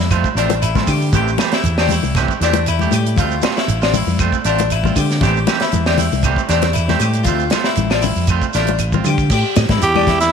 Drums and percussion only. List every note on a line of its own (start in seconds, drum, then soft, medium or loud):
0.00 snare soft
0.11 kick medium
0.11 closed hi-hat medium
0.11 claves medium
0.11 shekere medium
0.24 kick medium
0.24 shekere soft
0.37 closed hi-hat soft
0.37 shekere medium
0.50 closed hi-hat soft
0.50 high conga medium
0.50 shekere soft
0.62 closed hi-hat medium
0.62 claves medium
0.62 shekere medium
0.75 kick medium
0.75 snare soft
0.75 high conga medium
0.75 low conga medium
0.75 shekere soft
0.87 kick medium
0.87 open hi-hat medium
0.87 high conga medium
0.87 claves medium
0.87 shekere medium
1.02 shekere soft
1.13 kick medium
1.13 closed hi-hat medium
1.13 low conga medium
1.13 shekere medium
1.28 shekere soft
1.38 snare medium
1.38 closed hi-hat soft
1.38 high conga medium
1.38 claves medium
1.38 shekere medium
1.52 snare medium
1.52 closed hi-hat soft
1.52 shekere soft
1.64 closed hi-hat medium
1.64 shekere medium
1.78 snare medium
1.78 claves medium
1.78 shekere soft
1.89 open hi-hat medium
1.89 high conga medium
1.89 low conga medium
1.89 shekere medium
2.03 high conga medium
2.03 shekere soft
2.15 kick medium
2.15 snare soft
2.15 closed hi-hat medium
2.15 claves medium
2.15 shekere medium
2.28 kick medium
2.28 shekere soft
2.41 snare soft
2.41 closed hi-hat soft
2.41 shekere medium
2.53 closed hi-hat soft
2.53 high conga medium
2.53 shekere soft
2.66 closed hi-hat medium
2.66 claves medium
2.66 shekere medium
2.79 high conga medium
2.79 shekere soft
2.91 closed hi-hat soft
2.91 high conga medium
2.91 claves medium
2.91 shekere medium
3.06 closed hi-hat soft
3.06 shekere soft
3.16 kick medium
3.16 closed hi-hat medium
3.16 low conga medium
3.16 shekere medium
3.31 shekere soft
3.42 snare medium
3.42 closed hi-hat medium
3.42 high conga medium
3.42 claves medium
3.42 shekere medium
3.57 snare medium
3.57 shekere soft
3.68 closed hi-hat medium
3.68 shekere medium
3.82 snare medium
3.82 claves medium
3.82 shekere soft
3.94 open hi-hat medium
3.94 high conga medium
3.94 low conga medium
3.94 shekere medium
4.07 high conga medium
4.07 shekere soft
4.19 kick medium
4.19 closed hi-hat medium
4.19 claves medium
4.19 shekere medium
4.32 kick medium
4.32 shekere soft
4.44 closed hi-hat medium
4.44 shekere medium
4.58 closed hi-hat soft
4.58 high conga medium
4.58 shekere soft
4.70 closed hi-hat medium
4.70 claves medium
4.70 shekere medium
4.84 kick medium
4.84 high conga medium
4.84 low conga medium
4.84 shekere soft
4.96 kick medium
4.96 open hi-hat medium
4.96 high conga medium
4.96 claves medium
4.96 shekere medium
5.11 snare soft
5.11 shekere soft
5.21 kick medium
5.21 snare soft
5.21 closed hi-hat medium
5.21 low conga medium
5.21 shekere medium
5.36 shekere soft
5.47 snare medium
5.47 closed hi-hat soft
5.47 high conga medium
5.47 claves medium
5.47 shekere medium
5.60 snare medium
5.60 closed hi-hat soft
5.60 shekere soft
5.72 closed hi-hat medium
5.72 high conga medium
5.72 shekere medium
5.86 snare medium
5.86 claves medium
5.86 shekere soft
5.97 open hi-hat medium
5.97 high conga medium
5.97 low conga medium
5.97 shekere medium
6.12 high conga medium
6.12 shekere soft
6.23 kick medium
6.23 closed hi-hat medium
6.23 claves medium
6.23 shekere medium
6.36 kick medium
6.36 shekere soft
6.48 snare soft
6.48 closed hi-hat soft
6.48 shekere medium
6.62 snare soft
6.62 closed hi-hat soft
6.62 high conga medium
6.62 shekere soft
6.73 closed hi-hat medium
6.73 claves medium
6.73 shekere medium
6.88 snare soft
6.88 high conga medium
6.88 low conga medium
6.88 shekere soft
6.99 closed hi-hat soft
6.99 claves medium
6.99 shekere medium
7.13 closed hi-hat soft
7.13 shekere soft
7.24 kick medium
7.24 closed hi-hat medium
7.24 low conga medium
7.24 shekere medium
7.39 shekere soft
7.50 snare medium
7.50 closed hi-hat soft
7.50 high conga medium
7.50 claves medium
7.50 shekere medium
7.64 snare medium
7.64 shekere soft
7.75 closed hi-hat medium
7.75 high conga medium
7.75 shekere medium
7.91 snare medium
7.91 claves medium
7.91 shekere soft
8.02 open hi-hat medium
8.02 high conga medium
8.02 low conga medium
8.02 shekere medium
8.16 shekere soft
8.27 kick medium
8.27 closed hi-hat medium
8.27 claves medium
8.27 shekere medium
8.42 kick medium
8.42 shekere soft
8.54 snare soft
8.54 closed hi-hat soft
8.54 shekere medium
8.67 closed hi-hat soft
8.67 high conga medium
8.67 shekere soft
8.78 closed hi-hat medium
8.78 claves medium
8.78 shekere medium
8.92 kick medium
8.92 high conga medium
8.92 low conga medium
8.92 shekere soft
9.04 high tom soft
9.04 high conga medium
9.04 claves medium
9.04 shekere medium
9.18 kick medium
9.18 shekere soft
9.30 kick medium
9.30 crash medium
9.30 high conga soft
9.30 shekere medium
9.56 snare medium
9.56 closed hi-hat medium
9.56 high conga medium
9.56 claves medium
9.56 shekere medium
9.69 kick medium
9.69 snare medium
9.69 closed hi-hat soft
9.69 high conga medium
9.69 low conga medium
9.69 shekere soft
9.82 closed hi-hat medium
9.82 high conga soft
9.82 shekere medium
9.95 high conga medium
9.95 claves medium
10.07 kick medium
10.07 snare soft
10.07 closed hi-hat soft
10.07 low conga medium
10.07 shekere soft
10.20 snare soft
10.20 closed hi-hat soft
10.20 shekere medium